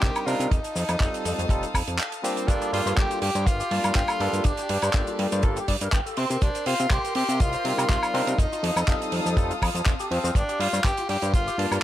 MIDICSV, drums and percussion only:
0, 0, Header, 1, 2, 480
1, 0, Start_track
1, 0, Key_signature, -2, "minor"
1, 0, Tempo, 491803
1, 506, Time_signature, 4, 2, 24, 8
1, 11548, End_track
2, 0, Start_track
2, 0, Title_t, "Drums"
2, 22, Note_on_c, 9, 42, 73
2, 25, Note_on_c, 9, 39, 112
2, 26, Note_on_c, 9, 36, 121
2, 33, Note_on_c, 9, 82, 56
2, 119, Note_off_c, 9, 42, 0
2, 123, Note_off_c, 9, 39, 0
2, 124, Note_off_c, 9, 36, 0
2, 131, Note_off_c, 9, 82, 0
2, 152, Note_on_c, 9, 42, 54
2, 155, Note_on_c, 9, 76, 74
2, 156, Note_on_c, 9, 82, 44
2, 249, Note_off_c, 9, 42, 0
2, 253, Note_off_c, 9, 76, 0
2, 254, Note_off_c, 9, 82, 0
2, 270, Note_on_c, 9, 46, 94
2, 270, Note_on_c, 9, 82, 90
2, 368, Note_off_c, 9, 46, 0
2, 368, Note_off_c, 9, 82, 0
2, 393, Note_on_c, 9, 42, 66
2, 398, Note_on_c, 9, 82, 52
2, 490, Note_off_c, 9, 42, 0
2, 495, Note_off_c, 9, 82, 0
2, 502, Note_on_c, 9, 36, 114
2, 503, Note_on_c, 9, 42, 83
2, 510, Note_on_c, 9, 82, 56
2, 600, Note_off_c, 9, 36, 0
2, 600, Note_off_c, 9, 42, 0
2, 607, Note_off_c, 9, 82, 0
2, 628, Note_on_c, 9, 42, 52
2, 629, Note_on_c, 9, 82, 44
2, 726, Note_off_c, 9, 42, 0
2, 727, Note_off_c, 9, 82, 0
2, 740, Note_on_c, 9, 82, 89
2, 747, Note_on_c, 9, 46, 101
2, 838, Note_off_c, 9, 82, 0
2, 844, Note_off_c, 9, 46, 0
2, 864, Note_on_c, 9, 42, 69
2, 867, Note_on_c, 9, 76, 55
2, 870, Note_on_c, 9, 82, 53
2, 961, Note_off_c, 9, 42, 0
2, 964, Note_off_c, 9, 76, 0
2, 968, Note_off_c, 9, 82, 0
2, 976, Note_on_c, 9, 39, 98
2, 979, Note_on_c, 9, 36, 116
2, 982, Note_on_c, 9, 42, 70
2, 992, Note_on_c, 9, 82, 56
2, 1074, Note_off_c, 9, 39, 0
2, 1077, Note_off_c, 9, 36, 0
2, 1080, Note_off_c, 9, 42, 0
2, 1090, Note_off_c, 9, 82, 0
2, 1114, Note_on_c, 9, 42, 59
2, 1120, Note_on_c, 9, 82, 45
2, 1212, Note_off_c, 9, 42, 0
2, 1217, Note_off_c, 9, 82, 0
2, 1222, Note_on_c, 9, 46, 88
2, 1226, Note_on_c, 9, 82, 93
2, 1320, Note_off_c, 9, 46, 0
2, 1324, Note_off_c, 9, 82, 0
2, 1358, Note_on_c, 9, 82, 47
2, 1359, Note_on_c, 9, 42, 66
2, 1456, Note_off_c, 9, 82, 0
2, 1456, Note_on_c, 9, 36, 108
2, 1457, Note_off_c, 9, 42, 0
2, 1462, Note_on_c, 9, 42, 77
2, 1469, Note_on_c, 9, 82, 58
2, 1554, Note_off_c, 9, 36, 0
2, 1560, Note_off_c, 9, 42, 0
2, 1567, Note_off_c, 9, 82, 0
2, 1589, Note_on_c, 9, 42, 52
2, 1596, Note_on_c, 9, 82, 39
2, 1687, Note_off_c, 9, 42, 0
2, 1694, Note_off_c, 9, 82, 0
2, 1703, Note_on_c, 9, 36, 63
2, 1706, Note_on_c, 9, 76, 77
2, 1708, Note_on_c, 9, 46, 109
2, 1710, Note_on_c, 9, 82, 89
2, 1800, Note_off_c, 9, 36, 0
2, 1803, Note_off_c, 9, 76, 0
2, 1805, Note_off_c, 9, 46, 0
2, 1808, Note_off_c, 9, 82, 0
2, 1829, Note_on_c, 9, 42, 72
2, 1833, Note_on_c, 9, 82, 50
2, 1927, Note_off_c, 9, 42, 0
2, 1931, Note_off_c, 9, 82, 0
2, 1939, Note_on_c, 9, 39, 115
2, 1946, Note_on_c, 9, 42, 79
2, 1948, Note_on_c, 9, 82, 61
2, 2036, Note_off_c, 9, 39, 0
2, 2044, Note_off_c, 9, 42, 0
2, 2045, Note_off_c, 9, 82, 0
2, 2070, Note_on_c, 9, 42, 56
2, 2080, Note_on_c, 9, 82, 40
2, 2167, Note_off_c, 9, 42, 0
2, 2178, Note_off_c, 9, 82, 0
2, 2189, Note_on_c, 9, 46, 98
2, 2193, Note_on_c, 9, 82, 89
2, 2287, Note_off_c, 9, 46, 0
2, 2291, Note_off_c, 9, 82, 0
2, 2313, Note_on_c, 9, 42, 63
2, 2321, Note_on_c, 9, 82, 55
2, 2410, Note_off_c, 9, 42, 0
2, 2418, Note_off_c, 9, 82, 0
2, 2423, Note_on_c, 9, 42, 77
2, 2424, Note_on_c, 9, 36, 115
2, 2433, Note_on_c, 9, 82, 75
2, 2520, Note_off_c, 9, 42, 0
2, 2521, Note_off_c, 9, 36, 0
2, 2531, Note_off_c, 9, 82, 0
2, 2553, Note_on_c, 9, 42, 49
2, 2554, Note_on_c, 9, 82, 47
2, 2651, Note_off_c, 9, 42, 0
2, 2652, Note_off_c, 9, 82, 0
2, 2671, Note_on_c, 9, 46, 103
2, 2768, Note_off_c, 9, 46, 0
2, 2800, Note_on_c, 9, 82, 71
2, 2801, Note_on_c, 9, 42, 73
2, 2898, Note_off_c, 9, 42, 0
2, 2898, Note_off_c, 9, 82, 0
2, 2899, Note_on_c, 9, 42, 71
2, 2903, Note_on_c, 9, 36, 116
2, 2903, Note_on_c, 9, 39, 120
2, 2910, Note_on_c, 9, 82, 60
2, 2997, Note_off_c, 9, 42, 0
2, 3000, Note_off_c, 9, 36, 0
2, 3001, Note_off_c, 9, 39, 0
2, 3007, Note_off_c, 9, 82, 0
2, 3033, Note_on_c, 9, 42, 51
2, 3036, Note_on_c, 9, 82, 48
2, 3130, Note_off_c, 9, 42, 0
2, 3134, Note_off_c, 9, 82, 0
2, 3141, Note_on_c, 9, 46, 104
2, 3239, Note_off_c, 9, 46, 0
2, 3271, Note_on_c, 9, 42, 65
2, 3271, Note_on_c, 9, 82, 74
2, 3369, Note_off_c, 9, 42, 0
2, 3369, Note_off_c, 9, 82, 0
2, 3383, Note_on_c, 9, 36, 116
2, 3386, Note_on_c, 9, 82, 60
2, 3387, Note_on_c, 9, 42, 85
2, 3480, Note_off_c, 9, 36, 0
2, 3484, Note_off_c, 9, 82, 0
2, 3485, Note_off_c, 9, 42, 0
2, 3514, Note_on_c, 9, 82, 51
2, 3520, Note_on_c, 9, 42, 54
2, 3612, Note_off_c, 9, 82, 0
2, 3618, Note_off_c, 9, 42, 0
2, 3622, Note_on_c, 9, 46, 99
2, 3720, Note_off_c, 9, 46, 0
2, 3747, Note_on_c, 9, 42, 70
2, 3751, Note_on_c, 9, 76, 56
2, 3755, Note_on_c, 9, 82, 82
2, 3845, Note_off_c, 9, 42, 0
2, 3848, Note_off_c, 9, 76, 0
2, 3852, Note_off_c, 9, 82, 0
2, 3856, Note_on_c, 9, 39, 124
2, 3860, Note_on_c, 9, 36, 122
2, 3860, Note_on_c, 9, 42, 79
2, 3868, Note_on_c, 9, 82, 67
2, 3953, Note_off_c, 9, 39, 0
2, 3957, Note_off_c, 9, 36, 0
2, 3958, Note_off_c, 9, 42, 0
2, 3966, Note_off_c, 9, 82, 0
2, 3980, Note_on_c, 9, 42, 59
2, 3984, Note_on_c, 9, 76, 78
2, 3997, Note_on_c, 9, 82, 49
2, 4077, Note_off_c, 9, 42, 0
2, 4082, Note_off_c, 9, 76, 0
2, 4094, Note_off_c, 9, 82, 0
2, 4103, Note_on_c, 9, 46, 94
2, 4201, Note_off_c, 9, 46, 0
2, 4230, Note_on_c, 9, 42, 65
2, 4233, Note_on_c, 9, 82, 74
2, 4328, Note_off_c, 9, 42, 0
2, 4331, Note_off_c, 9, 82, 0
2, 4332, Note_on_c, 9, 42, 79
2, 4342, Note_on_c, 9, 36, 107
2, 4345, Note_on_c, 9, 82, 72
2, 4430, Note_off_c, 9, 42, 0
2, 4440, Note_off_c, 9, 36, 0
2, 4443, Note_off_c, 9, 82, 0
2, 4463, Note_on_c, 9, 42, 56
2, 4477, Note_on_c, 9, 82, 51
2, 4561, Note_off_c, 9, 42, 0
2, 4574, Note_off_c, 9, 82, 0
2, 4580, Note_on_c, 9, 46, 112
2, 4677, Note_off_c, 9, 46, 0
2, 4705, Note_on_c, 9, 42, 72
2, 4709, Note_on_c, 9, 76, 59
2, 4714, Note_on_c, 9, 82, 78
2, 4803, Note_off_c, 9, 42, 0
2, 4807, Note_off_c, 9, 76, 0
2, 4812, Note_off_c, 9, 82, 0
2, 4813, Note_on_c, 9, 39, 111
2, 4816, Note_on_c, 9, 42, 77
2, 4823, Note_on_c, 9, 36, 116
2, 4826, Note_on_c, 9, 82, 65
2, 4911, Note_off_c, 9, 39, 0
2, 4914, Note_off_c, 9, 42, 0
2, 4921, Note_off_c, 9, 36, 0
2, 4923, Note_off_c, 9, 82, 0
2, 4949, Note_on_c, 9, 82, 47
2, 4952, Note_on_c, 9, 42, 52
2, 5047, Note_off_c, 9, 82, 0
2, 5049, Note_off_c, 9, 42, 0
2, 5065, Note_on_c, 9, 46, 96
2, 5162, Note_off_c, 9, 46, 0
2, 5191, Note_on_c, 9, 82, 83
2, 5194, Note_on_c, 9, 42, 71
2, 5289, Note_off_c, 9, 82, 0
2, 5292, Note_off_c, 9, 42, 0
2, 5297, Note_on_c, 9, 82, 63
2, 5298, Note_on_c, 9, 42, 70
2, 5304, Note_on_c, 9, 36, 118
2, 5395, Note_off_c, 9, 82, 0
2, 5396, Note_off_c, 9, 42, 0
2, 5402, Note_off_c, 9, 36, 0
2, 5432, Note_on_c, 9, 42, 50
2, 5433, Note_on_c, 9, 82, 50
2, 5530, Note_off_c, 9, 42, 0
2, 5530, Note_off_c, 9, 82, 0
2, 5545, Note_on_c, 9, 46, 118
2, 5547, Note_on_c, 9, 36, 58
2, 5642, Note_off_c, 9, 46, 0
2, 5644, Note_off_c, 9, 36, 0
2, 5672, Note_on_c, 9, 42, 66
2, 5675, Note_on_c, 9, 82, 70
2, 5770, Note_off_c, 9, 42, 0
2, 5773, Note_off_c, 9, 82, 0
2, 5781, Note_on_c, 9, 39, 127
2, 5784, Note_on_c, 9, 36, 116
2, 5784, Note_on_c, 9, 42, 77
2, 5787, Note_on_c, 9, 82, 72
2, 5878, Note_off_c, 9, 39, 0
2, 5881, Note_off_c, 9, 36, 0
2, 5882, Note_off_c, 9, 42, 0
2, 5884, Note_off_c, 9, 82, 0
2, 5920, Note_on_c, 9, 42, 51
2, 5922, Note_on_c, 9, 82, 43
2, 6017, Note_off_c, 9, 42, 0
2, 6019, Note_off_c, 9, 82, 0
2, 6020, Note_on_c, 9, 46, 99
2, 6118, Note_off_c, 9, 46, 0
2, 6153, Note_on_c, 9, 42, 63
2, 6153, Note_on_c, 9, 82, 74
2, 6251, Note_off_c, 9, 42, 0
2, 6251, Note_off_c, 9, 82, 0
2, 6264, Note_on_c, 9, 42, 81
2, 6264, Note_on_c, 9, 82, 75
2, 6265, Note_on_c, 9, 36, 121
2, 6361, Note_off_c, 9, 82, 0
2, 6362, Note_off_c, 9, 42, 0
2, 6363, Note_off_c, 9, 36, 0
2, 6391, Note_on_c, 9, 42, 54
2, 6396, Note_on_c, 9, 82, 49
2, 6489, Note_off_c, 9, 42, 0
2, 6494, Note_off_c, 9, 82, 0
2, 6500, Note_on_c, 9, 46, 110
2, 6597, Note_off_c, 9, 46, 0
2, 6632, Note_on_c, 9, 42, 60
2, 6636, Note_on_c, 9, 82, 79
2, 6730, Note_off_c, 9, 42, 0
2, 6733, Note_off_c, 9, 82, 0
2, 6738, Note_on_c, 9, 36, 122
2, 6739, Note_on_c, 9, 39, 115
2, 6747, Note_on_c, 9, 82, 63
2, 6752, Note_on_c, 9, 42, 67
2, 6836, Note_off_c, 9, 36, 0
2, 6837, Note_off_c, 9, 39, 0
2, 6844, Note_off_c, 9, 82, 0
2, 6850, Note_off_c, 9, 42, 0
2, 6876, Note_on_c, 9, 42, 54
2, 6882, Note_on_c, 9, 82, 47
2, 6974, Note_off_c, 9, 42, 0
2, 6977, Note_on_c, 9, 46, 108
2, 6979, Note_off_c, 9, 82, 0
2, 7075, Note_off_c, 9, 46, 0
2, 7115, Note_on_c, 9, 42, 67
2, 7121, Note_on_c, 9, 82, 69
2, 7213, Note_off_c, 9, 42, 0
2, 7218, Note_off_c, 9, 82, 0
2, 7221, Note_on_c, 9, 42, 68
2, 7226, Note_on_c, 9, 36, 127
2, 7230, Note_on_c, 9, 82, 74
2, 7319, Note_off_c, 9, 42, 0
2, 7323, Note_off_c, 9, 36, 0
2, 7327, Note_off_c, 9, 82, 0
2, 7345, Note_on_c, 9, 42, 52
2, 7354, Note_on_c, 9, 82, 52
2, 7443, Note_off_c, 9, 42, 0
2, 7452, Note_off_c, 9, 82, 0
2, 7465, Note_on_c, 9, 46, 110
2, 7562, Note_off_c, 9, 46, 0
2, 7598, Note_on_c, 9, 76, 62
2, 7601, Note_on_c, 9, 82, 69
2, 7604, Note_on_c, 9, 42, 68
2, 7695, Note_off_c, 9, 76, 0
2, 7699, Note_off_c, 9, 82, 0
2, 7700, Note_off_c, 9, 42, 0
2, 7700, Note_on_c, 9, 42, 72
2, 7704, Note_on_c, 9, 36, 123
2, 7706, Note_on_c, 9, 39, 122
2, 7716, Note_on_c, 9, 82, 72
2, 7798, Note_off_c, 9, 42, 0
2, 7802, Note_off_c, 9, 36, 0
2, 7804, Note_off_c, 9, 39, 0
2, 7814, Note_off_c, 9, 82, 0
2, 7834, Note_on_c, 9, 76, 71
2, 7837, Note_on_c, 9, 42, 54
2, 7841, Note_on_c, 9, 82, 50
2, 7932, Note_off_c, 9, 76, 0
2, 7935, Note_off_c, 9, 42, 0
2, 7938, Note_off_c, 9, 82, 0
2, 7950, Note_on_c, 9, 46, 108
2, 8047, Note_off_c, 9, 46, 0
2, 8073, Note_on_c, 9, 42, 73
2, 8082, Note_on_c, 9, 82, 77
2, 8171, Note_off_c, 9, 42, 0
2, 8180, Note_off_c, 9, 82, 0
2, 8184, Note_on_c, 9, 36, 113
2, 8189, Note_on_c, 9, 42, 80
2, 8193, Note_on_c, 9, 82, 67
2, 8281, Note_off_c, 9, 36, 0
2, 8287, Note_off_c, 9, 42, 0
2, 8290, Note_off_c, 9, 82, 0
2, 8321, Note_on_c, 9, 82, 52
2, 8325, Note_on_c, 9, 42, 52
2, 8419, Note_off_c, 9, 82, 0
2, 8422, Note_off_c, 9, 42, 0
2, 8430, Note_on_c, 9, 46, 116
2, 8527, Note_off_c, 9, 46, 0
2, 8556, Note_on_c, 9, 76, 65
2, 8557, Note_on_c, 9, 82, 73
2, 8559, Note_on_c, 9, 42, 60
2, 8653, Note_off_c, 9, 76, 0
2, 8655, Note_off_c, 9, 82, 0
2, 8656, Note_off_c, 9, 42, 0
2, 8665, Note_on_c, 9, 36, 127
2, 8668, Note_on_c, 9, 39, 100
2, 8669, Note_on_c, 9, 42, 72
2, 8677, Note_on_c, 9, 82, 62
2, 8763, Note_off_c, 9, 36, 0
2, 8766, Note_off_c, 9, 39, 0
2, 8767, Note_off_c, 9, 42, 0
2, 8774, Note_off_c, 9, 82, 0
2, 8800, Note_on_c, 9, 42, 60
2, 8813, Note_on_c, 9, 82, 50
2, 8898, Note_off_c, 9, 42, 0
2, 8902, Note_on_c, 9, 46, 96
2, 8910, Note_off_c, 9, 82, 0
2, 8999, Note_off_c, 9, 46, 0
2, 9039, Note_on_c, 9, 82, 76
2, 9044, Note_on_c, 9, 42, 62
2, 9137, Note_off_c, 9, 82, 0
2, 9141, Note_off_c, 9, 42, 0
2, 9143, Note_on_c, 9, 36, 124
2, 9145, Note_on_c, 9, 42, 73
2, 9154, Note_on_c, 9, 82, 66
2, 9241, Note_off_c, 9, 36, 0
2, 9243, Note_off_c, 9, 42, 0
2, 9252, Note_off_c, 9, 82, 0
2, 9280, Note_on_c, 9, 42, 51
2, 9283, Note_on_c, 9, 82, 53
2, 9378, Note_off_c, 9, 42, 0
2, 9381, Note_off_c, 9, 82, 0
2, 9388, Note_on_c, 9, 36, 64
2, 9393, Note_on_c, 9, 46, 119
2, 9395, Note_on_c, 9, 76, 76
2, 9485, Note_off_c, 9, 36, 0
2, 9491, Note_off_c, 9, 46, 0
2, 9492, Note_off_c, 9, 76, 0
2, 9517, Note_on_c, 9, 42, 68
2, 9527, Note_on_c, 9, 82, 78
2, 9615, Note_off_c, 9, 42, 0
2, 9621, Note_on_c, 9, 39, 110
2, 9625, Note_off_c, 9, 82, 0
2, 9626, Note_on_c, 9, 36, 111
2, 9628, Note_on_c, 9, 82, 63
2, 9631, Note_on_c, 9, 42, 70
2, 9718, Note_off_c, 9, 39, 0
2, 9724, Note_off_c, 9, 36, 0
2, 9726, Note_off_c, 9, 82, 0
2, 9728, Note_off_c, 9, 42, 0
2, 9754, Note_on_c, 9, 82, 55
2, 9762, Note_on_c, 9, 42, 55
2, 9851, Note_off_c, 9, 82, 0
2, 9859, Note_off_c, 9, 42, 0
2, 9872, Note_on_c, 9, 46, 93
2, 9970, Note_off_c, 9, 46, 0
2, 9999, Note_on_c, 9, 82, 82
2, 10010, Note_on_c, 9, 42, 67
2, 10097, Note_off_c, 9, 82, 0
2, 10102, Note_on_c, 9, 36, 113
2, 10107, Note_off_c, 9, 42, 0
2, 10107, Note_on_c, 9, 42, 80
2, 10113, Note_on_c, 9, 82, 73
2, 10200, Note_off_c, 9, 36, 0
2, 10205, Note_off_c, 9, 42, 0
2, 10210, Note_off_c, 9, 82, 0
2, 10238, Note_on_c, 9, 42, 50
2, 10238, Note_on_c, 9, 82, 50
2, 10335, Note_off_c, 9, 42, 0
2, 10335, Note_off_c, 9, 82, 0
2, 10350, Note_on_c, 9, 46, 117
2, 10447, Note_off_c, 9, 46, 0
2, 10478, Note_on_c, 9, 82, 81
2, 10482, Note_on_c, 9, 42, 66
2, 10575, Note_off_c, 9, 82, 0
2, 10580, Note_off_c, 9, 42, 0
2, 10582, Note_on_c, 9, 39, 110
2, 10585, Note_on_c, 9, 36, 123
2, 10589, Note_on_c, 9, 42, 75
2, 10597, Note_on_c, 9, 82, 71
2, 10679, Note_off_c, 9, 39, 0
2, 10682, Note_off_c, 9, 36, 0
2, 10686, Note_off_c, 9, 42, 0
2, 10695, Note_off_c, 9, 82, 0
2, 10710, Note_on_c, 9, 42, 58
2, 10713, Note_on_c, 9, 82, 51
2, 10807, Note_off_c, 9, 42, 0
2, 10811, Note_off_c, 9, 82, 0
2, 10824, Note_on_c, 9, 46, 99
2, 10922, Note_off_c, 9, 46, 0
2, 10950, Note_on_c, 9, 42, 63
2, 10964, Note_on_c, 9, 82, 70
2, 11048, Note_off_c, 9, 42, 0
2, 11061, Note_off_c, 9, 82, 0
2, 11064, Note_on_c, 9, 36, 127
2, 11067, Note_on_c, 9, 42, 69
2, 11071, Note_on_c, 9, 82, 68
2, 11162, Note_off_c, 9, 36, 0
2, 11165, Note_off_c, 9, 42, 0
2, 11169, Note_off_c, 9, 82, 0
2, 11200, Note_on_c, 9, 42, 49
2, 11202, Note_on_c, 9, 82, 46
2, 11298, Note_off_c, 9, 42, 0
2, 11299, Note_off_c, 9, 82, 0
2, 11312, Note_on_c, 9, 46, 98
2, 11410, Note_off_c, 9, 46, 0
2, 11435, Note_on_c, 9, 76, 66
2, 11437, Note_on_c, 9, 82, 75
2, 11441, Note_on_c, 9, 42, 60
2, 11533, Note_off_c, 9, 76, 0
2, 11535, Note_off_c, 9, 82, 0
2, 11539, Note_off_c, 9, 42, 0
2, 11548, End_track
0, 0, End_of_file